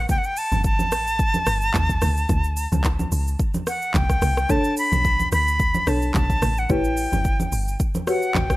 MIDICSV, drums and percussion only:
0, 0, Header, 1, 2, 480
1, 0, Start_track
1, 0, Key_signature, 2, "minor"
1, 0, Tempo, 550459
1, 80, Time_signature, 4, 2, 24, 8
1, 7470, End_track
2, 0, Start_track
2, 0, Title_t, "Drums"
2, 80, Note_on_c, 9, 36, 125
2, 80, Note_on_c, 9, 82, 87
2, 82, Note_on_c, 9, 64, 78
2, 167, Note_off_c, 9, 36, 0
2, 167, Note_off_c, 9, 82, 0
2, 169, Note_off_c, 9, 64, 0
2, 207, Note_on_c, 9, 82, 52
2, 294, Note_off_c, 9, 82, 0
2, 320, Note_on_c, 9, 46, 58
2, 320, Note_on_c, 9, 82, 94
2, 407, Note_off_c, 9, 46, 0
2, 407, Note_off_c, 9, 82, 0
2, 453, Note_on_c, 9, 82, 54
2, 456, Note_on_c, 9, 63, 83
2, 540, Note_off_c, 9, 82, 0
2, 543, Note_off_c, 9, 63, 0
2, 560, Note_on_c, 9, 82, 75
2, 561, Note_on_c, 9, 36, 110
2, 647, Note_off_c, 9, 82, 0
2, 649, Note_off_c, 9, 36, 0
2, 690, Note_on_c, 9, 63, 77
2, 693, Note_on_c, 9, 82, 56
2, 778, Note_off_c, 9, 63, 0
2, 780, Note_off_c, 9, 82, 0
2, 801, Note_on_c, 9, 46, 60
2, 801, Note_on_c, 9, 82, 100
2, 803, Note_on_c, 9, 37, 98
2, 888, Note_off_c, 9, 46, 0
2, 888, Note_off_c, 9, 82, 0
2, 891, Note_off_c, 9, 37, 0
2, 936, Note_on_c, 9, 82, 53
2, 1023, Note_off_c, 9, 82, 0
2, 1039, Note_on_c, 9, 82, 82
2, 1040, Note_on_c, 9, 36, 119
2, 1126, Note_off_c, 9, 82, 0
2, 1127, Note_off_c, 9, 36, 0
2, 1168, Note_on_c, 9, 82, 56
2, 1170, Note_on_c, 9, 63, 82
2, 1255, Note_off_c, 9, 82, 0
2, 1257, Note_off_c, 9, 63, 0
2, 1279, Note_on_c, 9, 37, 101
2, 1279, Note_on_c, 9, 46, 53
2, 1279, Note_on_c, 9, 82, 91
2, 1366, Note_off_c, 9, 37, 0
2, 1366, Note_off_c, 9, 46, 0
2, 1366, Note_off_c, 9, 82, 0
2, 1409, Note_on_c, 9, 82, 52
2, 1496, Note_off_c, 9, 82, 0
2, 1518, Note_on_c, 9, 39, 102
2, 1519, Note_on_c, 9, 36, 98
2, 1522, Note_on_c, 9, 82, 74
2, 1526, Note_on_c, 9, 63, 76
2, 1526, Note_on_c, 9, 64, 76
2, 1606, Note_off_c, 9, 36, 0
2, 1606, Note_off_c, 9, 39, 0
2, 1610, Note_off_c, 9, 82, 0
2, 1613, Note_off_c, 9, 63, 0
2, 1613, Note_off_c, 9, 64, 0
2, 1651, Note_on_c, 9, 36, 88
2, 1654, Note_on_c, 9, 82, 62
2, 1738, Note_off_c, 9, 36, 0
2, 1741, Note_off_c, 9, 82, 0
2, 1759, Note_on_c, 9, 64, 77
2, 1760, Note_on_c, 9, 37, 99
2, 1760, Note_on_c, 9, 46, 58
2, 1760, Note_on_c, 9, 82, 94
2, 1846, Note_off_c, 9, 64, 0
2, 1847, Note_off_c, 9, 37, 0
2, 1847, Note_off_c, 9, 46, 0
2, 1847, Note_off_c, 9, 82, 0
2, 1894, Note_on_c, 9, 82, 54
2, 1981, Note_off_c, 9, 82, 0
2, 1999, Note_on_c, 9, 82, 89
2, 2000, Note_on_c, 9, 36, 123
2, 2002, Note_on_c, 9, 64, 79
2, 2087, Note_off_c, 9, 36, 0
2, 2087, Note_off_c, 9, 82, 0
2, 2089, Note_off_c, 9, 64, 0
2, 2127, Note_on_c, 9, 82, 53
2, 2214, Note_off_c, 9, 82, 0
2, 2239, Note_on_c, 9, 46, 57
2, 2239, Note_on_c, 9, 82, 96
2, 2326, Note_off_c, 9, 46, 0
2, 2326, Note_off_c, 9, 82, 0
2, 2374, Note_on_c, 9, 82, 55
2, 2376, Note_on_c, 9, 63, 86
2, 2461, Note_off_c, 9, 82, 0
2, 2463, Note_off_c, 9, 63, 0
2, 2479, Note_on_c, 9, 39, 95
2, 2481, Note_on_c, 9, 36, 106
2, 2481, Note_on_c, 9, 82, 78
2, 2566, Note_off_c, 9, 39, 0
2, 2568, Note_off_c, 9, 82, 0
2, 2569, Note_off_c, 9, 36, 0
2, 2610, Note_on_c, 9, 63, 81
2, 2612, Note_on_c, 9, 82, 56
2, 2697, Note_off_c, 9, 63, 0
2, 2700, Note_off_c, 9, 82, 0
2, 2721, Note_on_c, 9, 46, 57
2, 2721, Note_on_c, 9, 82, 103
2, 2808, Note_off_c, 9, 46, 0
2, 2808, Note_off_c, 9, 82, 0
2, 2857, Note_on_c, 9, 82, 52
2, 2944, Note_off_c, 9, 82, 0
2, 2960, Note_on_c, 9, 36, 125
2, 2960, Note_on_c, 9, 82, 79
2, 3047, Note_off_c, 9, 82, 0
2, 3048, Note_off_c, 9, 36, 0
2, 3089, Note_on_c, 9, 82, 60
2, 3090, Note_on_c, 9, 63, 84
2, 3176, Note_off_c, 9, 82, 0
2, 3177, Note_off_c, 9, 63, 0
2, 3199, Note_on_c, 9, 37, 99
2, 3200, Note_on_c, 9, 46, 53
2, 3200, Note_on_c, 9, 82, 91
2, 3287, Note_off_c, 9, 37, 0
2, 3287, Note_off_c, 9, 46, 0
2, 3287, Note_off_c, 9, 82, 0
2, 3330, Note_on_c, 9, 82, 54
2, 3417, Note_off_c, 9, 82, 0
2, 3439, Note_on_c, 9, 36, 101
2, 3439, Note_on_c, 9, 39, 99
2, 3443, Note_on_c, 9, 82, 73
2, 3446, Note_on_c, 9, 63, 77
2, 3446, Note_on_c, 9, 64, 76
2, 3526, Note_off_c, 9, 36, 0
2, 3526, Note_off_c, 9, 39, 0
2, 3530, Note_off_c, 9, 82, 0
2, 3534, Note_off_c, 9, 63, 0
2, 3534, Note_off_c, 9, 64, 0
2, 3571, Note_on_c, 9, 36, 92
2, 3571, Note_on_c, 9, 37, 96
2, 3574, Note_on_c, 9, 82, 60
2, 3658, Note_off_c, 9, 36, 0
2, 3658, Note_off_c, 9, 37, 0
2, 3661, Note_off_c, 9, 82, 0
2, 3679, Note_on_c, 9, 64, 80
2, 3680, Note_on_c, 9, 46, 60
2, 3680, Note_on_c, 9, 82, 99
2, 3681, Note_on_c, 9, 37, 99
2, 3766, Note_off_c, 9, 64, 0
2, 3768, Note_off_c, 9, 37, 0
2, 3768, Note_off_c, 9, 46, 0
2, 3768, Note_off_c, 9, 82, 0
2, 3813, Note_on_c, 9, 37, 98
2, 3814, Note_on_c, 9, 82, 54
2, 3901, Note_off_c, 9, 37, 0
2, 3901, Note_off_c, 9, 82, 0
2, 3919, Note_on_c, 9, 82, 90
2, 3920, Note_on_c, 9, 36, 127
2, 3922, Note_on_c, 9, 64, 79
2, 4007, Note_off_c, 9, 82, 0
2, 4008, Note_off_c, 9, 36, 0
2, 4009, Note_off_c, 9, 64, 0
2, 4047, Note_on_c, 9, 82, 55
2, 4134, Note_off_c, 9, 82, 0
2, 4160, Note_on_c, 9, 46, 56
2, 4160, Note_on_c, 9, 82, 94
2, 4247, Note_off_c, 9, 46, 0
2, 4247, Note_off_c, 9, 82, 0
2, 4294, Note_on_c, 9, 82, 58
2, 4295, Note_on_c, 9, 63, 87
2, 4381, Note_off_c, 9, 82, 0
2, 4382, Note_off_c, 9, 63, 0
2, 4401, Note_on_c, 9, 36, 108
2, 4401, Note_on_c, 9, 82, 79
2, 4488, Note_off_c, 9, 82, 0
2, 4489, Note_off_c, 9, 36, 0
2, 4530, Note_on_c, 9, 63, 80
2, 4533, Note_on_c, 9, 82, 55
2, 4617, Note_off_c, 9, 63, 0
2, 4620, Note_off_c, 9, 82, 0
2, 4641, Note_on_c, 9, 46, 60
2, 4641, Note_on_c, 9, 82, 99
2, 4643, Note_on_c, 9, 37, 95
2, 4728, Note_off_c, 9, 46, 0
2, 4728, Note_off_c, 9, 82, 0
2, 4731, Note_off_c, 9, 37, 0
2, 4776, Note_on_c, 9, 82, 53
2, 4864, Note_off_c, 9, 82, 0
2, 4880, Note_on_c, 9, 36, 121
2, 4880, Note_on_c, 9, 82, 80
2, 4967, Note_off_c, 9, 82, 0
2, 4968, Note_off_c, 9, 36, 0
2, 5009, Note_on_c, 9, 82, 59
2, 5010, Note_on_c, 9, 63, 85
2, 5096, Note_off_c, 9, 82, 0
2, 5097, Note_off_c, 9, 63, 0
2, 5120, Note_on_c, 9, 37, 102
2, 5120, Note_on_c, 9, 46, 52
2, 5120, Note_on_c, 9, 82, 91
2, 5207, Note_off_c, 9, 37, 0
2, 5207, Note_off_c, 9, 46, 0
2, 5207, Note_off_c, 9, 82, 0
2, 5250, Note_on_c, 9, 82, 53
2, 5337, Note_off_c, 9, 82, 0
2, 5359, Note_on_c, 9, 36, 104
2, 5359, Note_on_c, 9, 39, 101
2, 5363, Note_on_c, 9, 82, 77
2, 5366, Note_on_c, 9, 63, 78
2, 5366, Note_on_c, 9, 64, 76
2, 5446, Note_off_c, 9, 36, 0
2, 5446, Note_off_c, 9, 39, 0
2, 5450, Note_off_c, 9, 82, 0
2, 5453, Note_off_c, 9, 63, 0
2, 5453, Note_off_c, 9, 64, 0
2, 5491, Note_on_c, 9, 36, 95
2, 5493, Note_on_c, 9, 82, 60
2, 5578, Note_off_c, 9, 36, 0
2, 5581, Note_off_c, 9, 82, 0
2, 5598, Note_on_c, 9, 64, 78
2, 5600, Note_on_c, 9, 37, 100
2, 5600, Note_on_c, 9, 46, 61
2, 5600, Note_on_c, 9, 82, 94
2, 5686, Note_off_c, 9, 64, 0
2, 5687, Note_off_c, 9, 46, 0
2, 5687, Note_off_c, 9, 82, 0
2, 5688, Note_off_c, 9, 37, 0
2, 5733, Note_on_c, 9, 82, 52
2, 5820, Note_off_c, 9, 82, 0
2, 5839, Note_on_c, 9, 82, 89
2, 5840, Note_on_c, 9, 36, 127
2, 5843, Note_on_c, 9, 64, 80
2, 5926, Note_off_c, 9, 82, 0
2, 5927, Note_off_c, 9, 36, 0
2, 5930, Note_off_c, 9, 64, 0
2, 5967, Note_on_c, 9, 82, 53
2, 6054, Note_off_c, 9, 82, 0
2, 6080, Note_on_c, 9, 46, 54
2, 6080, Note_on_c, 9, 82, 96
2, 6167, Note_off_c, 9, 46, 0
2, 6167, Note_off_c, 9, 82, 0
2, 6214, Note_on_c, 9, 82, 56
2, 6216, Note_on_c, 9, 63, 87
2, 6301, Note_off_c, 9, 82, 0
2, 6304, Note_off_c, 9, 63, 0
2, 6320, Note_on_c, 9, 82, 76
2, 6321, Note_on_c, 9, 36, 110
2, 6407, Note_off_c, 9, 82, 0
2, 6409, Note_off_c, 9, 36, 0
2, 6451, Note_on_c, 9, 63, 83
2, 6453, Note_on_c, 9, 82, 57
2, 6538, Note_off_c, 9, 63, 0
2, 6541, Note_off_c, 9, 82, 0
2, 6561, Note_on_c, 9, 46, 59
2, 6561, Note_on_c, 9, 82, 102
2, 6648, Note_off_c, 9, 46, 0
2, 6648, Note_off_c, 9, 82, 0
2, 6697, Note_on_c, 9, 82, 52
2, 6784, Note_off_c, 9, 82, 0
2, 6801, Note_on_c, 9, 36, 118
2, 6801, Note_on_c, 9, 82, 81
2, 6888, Note_off_c, 9, 36, 0
2, 6888, Note_off_c, 9, 82, 0
2, 6930, Note_on_c, 9, 63, 84
2, 6930, Note_on_c, 9, 82, 58
2, 7017, Note_off_c, 9, 82, 0
2, 7018, Note_off_c, 9, 63, 0
2, 7040, Note_on_c, 9, 37, 98
2, 7040, Note_on_c, 9, 46, 52
2, 7040, Note_on_c, 9, 82, 86
2, 7127, Note_off_c, 9, 37, 0
2, 7128, Note_off_c, 9, 46, 0
2, 7128, Note_off_c, 9, 82, 0
2, 7171, Note_on_c, 9, 82, 52
2, 7258, Note_off_c, 9, 82, 0
2, 7279, Note_on_c, 9, 36, 96
2, 7280, Note_on_c, 9, 39, 97
2, 7284, Note_on_c, 9, 82, 72
2, 7287, Note_on_c, 9, 63, 82
2, 7287, Note_on_c, 9, 64, 75
2, 7366, Note_off_c, 9, 36, 0
2, 7367, Note_off_c, 9, 39, 0
2, 7371, Note_off_c, 9, 82, 0
2, 7375, Note_off_c, 9, 63, 0
2, 7375, Note_off_c, 9, 64, 0
2, 7412, Note_on_c, 9, 36, 93
2, 7412, Note_on_c, 9, 37, 99
2, 7415, Note_on_c, 9, 82, 59
2, 7470, Note_off_c, 9, 36, 0
2, 7470, Note_off_c, 9, 37, 0
2, 7470, Note_off_c, 9, 82, 0
2, 7470, End_track
0, 0, End_of_file